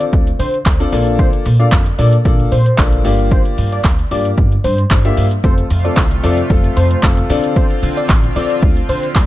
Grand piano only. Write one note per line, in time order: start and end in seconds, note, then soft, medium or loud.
0.00 0.27 C4 medium
0.00 0.27 D4 medium
0.00 0.27 F4 medium
0.00 0.27 A4 medium
0.00 0.27 D5 medium
0.66 0.73 A4 soft
0.66 0.73 D5 medium
0.80 0.92 C4 loud
0.80 0.91 D4 medium
0.80 0.91 F4 medium
0.80 0.91 A4 medium
0.80 0.91 D5 loud
0.93 1.46 A#3 loud
0.93 1.46 D4 medium
0.93 1.46 F4 medium
0.93 1.46 A4 medium
0.93 1.46 D5 loud
1.59 1.79 A#3 medium
1.59 1.79 D4 medium
1.59 1.79 F4 medium
1.59 1.79 A4 medium
1.59 1.79 F5 medium
1.99 2.13 A#3 medium
1.99 2.13 D4 medium
1.99 2.13 F4 medium
1.99 2.13 A4 medium
1.99 2.13 D5 loud
2.25 2.52 A#3 medium
2.25 2.52 D4 medium
2.25 2.52 F4 medium
2.25 2.52 A4 medium
2.25 2.52 D5 loud
2.78 3.03 A#3 medium
2.78 3.03 D4 medium
2.78 3.03 F4 medium
2.78 3.05 A4 medium
2.78 3.03 D5 loud
3.04 3.90 A#3 loud
3.04 3.90 D4 medium
3.04 3.90 F4 medium
3.04 3.90 G4 medium
3.04 3.90 D5 loud
4.11 4.51 A#3 medium
4.11 4.51 D4 medium
4.11 4.51 F4 medium
4.11 4.51 G4 medium
4.11 4.52 D5 medium
4.91 4.98 G4 soft
4.91 4.98 D5 medium
5.05 5.24 A#3 loud
5.05 5.24 D4 medium
5.05 5.24 F4 medium
5.05 5.24 G4 medium
5.05 5.24 E5 loud
5.44 5.64 C4 medium
5.44 5.64 F4 medium
5.44 5.64 A4 medium
5.84 6.04 C4 medium
5.84 6.04 F4 medium
5.84 6.04 A4 medium
6.23 6.37 C4 medium
6.23 6.38 F4 medium
6.23 6.38 A4 loud
6.50 6.76 C4 medium
6.50 6.76 F4 medium
6.50 6.77 A4 loud
7.03 7.28 C4 medium
7.03 7.28 F4 medium
7.03 7.28 A4 loud
7.29 8.15 C4 loud
7.29 8.15 D4 medium
7.29 8.15 F4 medium
7.29 8.15 A4 medium
7.29 8.15 D5 loud
8.36 8.76 C4 medium
8.36 8.76 D4 medium
8.36 8.76 F4 medium
8.36 8.76 A4 medium
8.36 8.76 D5 medium
9.16 9.23 A4 soft
9.16 9.23 D5 medium